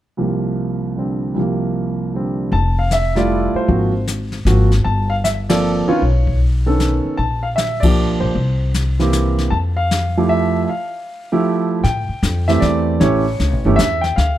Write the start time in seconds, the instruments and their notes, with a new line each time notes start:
0.17 grand piano C2 C3 F3 A#3
0.96 grand piano D3 G3 C4
1.34 grand piano C2 C3 F3
1.40 grand piano A#3
2.13 grand piano D3 G3 C4
2.52 upright bass F1, grand piano A5, brush sweep, kick
2.79 grand piano F5
2.91 grand piano E5, snare, hi-hat pedal
3.15 grand piano G3 A3 E4 F4 D5, snare
3.54 grand piano C5, muted upright bass stroke
3.68 upright bass G#1, grand piano F3 A#3 C4 F#4, brush sweep, kick
4.07 snare, hi-hat pedal
4.32 snare
4.45 upright bass G#1, grand piano F3 A#3 C4 F#4, snare, hi-hat pedal
4.72 snare
4.84 upright bass G1, grand piano A5, brush sweep, kick
5.10 grand piano F5
5.24 grand piano E5, snare, hi-hat pedal
5.49 grand piano F3 A#3 C4 A4 D5, snare, ride
5.88 grand piano D#3 B3 C#4 F4 C#5, muted upright bass stroke
6.02 upright bass B1, brush sweep, kick
6.27 kick
6.66 grand piano D#3 B3 C#4 A4
6.80 snare, hi-hat pedal
7.05 muted upright bass stroke
7.17 upright bass A#1, grand piano A5, brush sweep, kick
7.43 grand piano F5
7.56 grand piano E5, snare, hi-hat pedal
7.80 grand piano F3 A#3 D5, kick, ride
7.84 grand piano D4 G4
8.20 upright bass A#1, grand piano C5
8.35 upright bass C2, brush sweep, kick
8.74 snare, hi-hat pedal
9.00 grand piano E3 A#3 C4 G4, snare
9.13 snare, hi-hat pedal
9.38 snare
9.51 upright bass F2, grand piano A5, brush sweep, kick
9.77 grand piano F5
9.91 snare, hi-hat pedal
10.17 grand piano F3 A3 E4 G4
10.29 grand piano E5
10.64 grand piano E5
10.69 grand piano F5
11.32 grand piano F3 A3 E4 G4
11.84 upright bass A2, grand piano G5, brush sweep, kick, snare
12.09 muted upright bass stroke
12.23 upright bass F2, kick, snare, hi-hat pedal
12.48 grand piano E3 A3 C4 G4 E5, snare
12.60 upright bass E2, grand piano D5, kick, snare
13.00 upright bass A1, grand piano E3 A3 C#4 G4 C#5, brush sweep, kick, snare
13.40 upright bass C#2, kick, snare
13.53 upright bass A1
13.65 upright bass G1, grand piano E3 A3 C#4 G4
13.76 upright bass E2, grand piano E5, kick, snare, hi-hat pedal
14.01 grand piano G5, snare
14.16 upright bass D2, grand piano F5, brush sweep, kick, snare